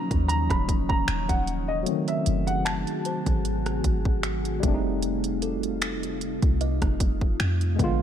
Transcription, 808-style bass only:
0.11 D#2
0.51 D#1
1.09 D#1
1.30 D#1
2.27 F#1
3.27 G#1
3.85 G#1
4.63 F1
6.43 C2
6.82 F1
7.40 F2
7.79 A#1

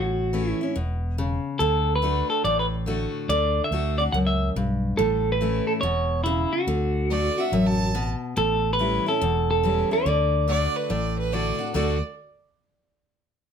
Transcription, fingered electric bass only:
Already playing: A1
0.76 E1
1.60 D2
2.44 A1
3.29 D2
3.71 D2
4.13 C#2
4.56 B1
4.98 A1
5.83 E1
6.67 D2
7.52 A1
8.37 A1
9.22 E1
10.05 D2
10.90 A1
11.75 D2

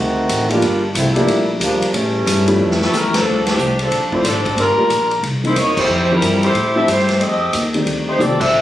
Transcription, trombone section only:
Already playing: D#3 A3 C4 F#4
0.49 G3 A#3 D4 F4
0.95 F3 A3 C4 E4
1.15 G3 A#3 D4 E4
1.61 F3 G3 A#3 D4
1.94 E3 G3 A3 C#4

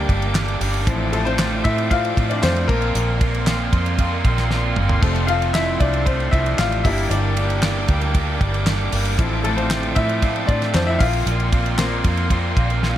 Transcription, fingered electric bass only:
0.09 G1
0.61 G1
0.87 A1
1.65 A2
2.17 A2
2.43 F2
2.69 A#1
2.95 A#1
3.73 F2
4.25 A#1
4.77 G1
5.03 F1
5.80 C2
6.33 C2
6.59 A1
6.85 G1
7.10 G1
7.89 D2
8.41 G1
8.93 G1
9.19 A1
9.96 A2
10.49 A2
10.74 F2
11.01 A#1
11.26 A#1
12.05 F2
12.57 A#1

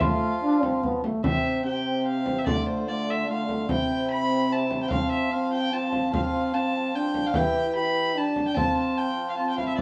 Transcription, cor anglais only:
0.01 F4
1.25 G4
1.66 G4
2.47 F4
2.89 F4
3.30 F4
3.71 E4
4.92 F4
5.33 F4
5.73 F4
6.14 F4
6.54 F4
7.35 G4
7.76 G4
8.57 F4
9.38 F4
9.58 E4

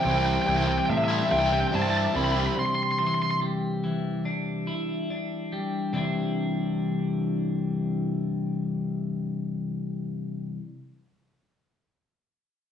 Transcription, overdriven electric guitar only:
0.03 C3 G3 C4 E4
0.45 C3 G3 C4 E4
0.67 muted overdriven electric guitar stroke
1.08 G3 C4 E4
1.29 C3 G3 C4 E4
1.51 muted overdriven electric guitar stroke
1.72 C3 G3 C4 E4
2.14 C3 G3 C4 E4
2.35 G3 C4 E4

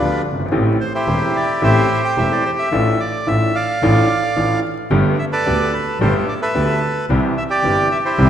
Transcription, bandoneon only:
Already playing: D4 F4 B4
0.81 C5
0.94 E4 G4 C5
1.36 D5
1.64 G4 C5 E5
2.04 G5
2.18 E5
2.32 D5
2.45 C5
2.59 E5
3.00 D5
3.27 E5
3.55 D5 F5
5.19 E5
5.32 A4 B4 D5
5.73 B4
6.01 A4 C5
6.29 D5
6.42 A4 B4 E5
7.38 E5
7.50 G4 D5
7.92 E5
8.05 E4 G4 C5

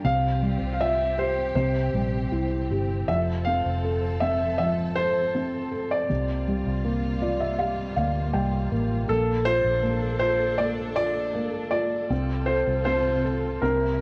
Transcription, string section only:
0.03 C3 C4 F4 G4
1.57 C4
3.07 F3 A4
6.09 C3 G3 A#3 F4
9.09 D4 A4
12.12 C3 C4 F4 A4
13.63 C3 G3 A#3 E4

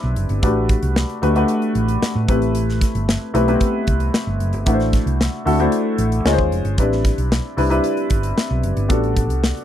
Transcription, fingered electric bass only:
0.04 B1
0.17 F#1
0.30 G1
0.43 A1
0.83 C2
1.23 D2
1.75 A1
2.02 muted fingered electric bass stroke
2.15 A2
2.28 A1
2.95 G1
3.34 B1
3.88 C2
4.27 G1
4.40 F#1
4.54 G1
4.67 A1
5.06 C2
5.46 D2
5.98 A1
6.25 C#2
6.39 D#2
6.51 F1
6.65 G1
6.78 A1
7.18 B1
7.57 C2
8.11 G1
8.51 B1
8.63 F#1
8.77 G1
8.90 A1
9.30 C2

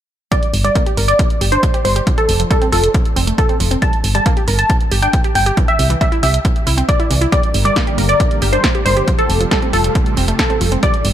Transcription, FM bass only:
0.54 G1
0.97 G1
1.41 G1
1.85 G1
2.29 F1
2.72 F1
3.16 F1
3.60 F1
4.04 G1
4.48 G1
4.92 G1
5.35 G1
5.79 C2
6.23 C2
6.67 C2
7.11 C2
7.54 G1
7.98 G1
8.42 G1
8.86 G1
9.29 F1
9.73 F1
10.17 F1
10.61 F1
11.05 G1

